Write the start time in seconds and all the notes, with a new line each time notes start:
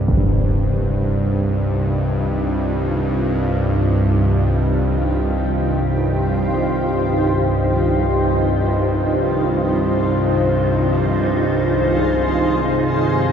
Already playing: C2 G2 C5
0.07 D#4, impact
0.70 F4
3.48 G4
4.60 C5
10.51 G#4